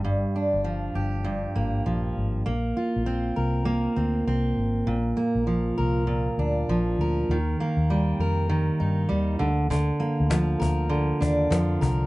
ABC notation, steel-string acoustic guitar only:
X:1
M:4/4
L:1/8
Q:"Swing 16ths" 1/4=99
K:Bbmix
V:1 name="Steel-string acoustic guitar"
G,, D F, G G,, B, F,2 | B, F C B B, C C2 | B,, B, F, B B,, D F, B | E, B, G, B E, E G, D, |
D, B, F, B D, D F, B |]